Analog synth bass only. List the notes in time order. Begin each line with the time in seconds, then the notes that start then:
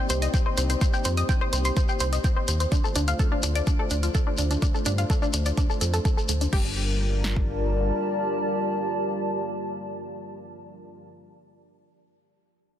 0.10 C2
0.58 C2
1.05 F2
1.53 C2
2.00 C2
2.48 D#2
2.96 D2
3.43 D2
3.91 D2
4.39 D2
4.86 G2
5.34 D2
5.81 F2
6.29 D2
6.53 G1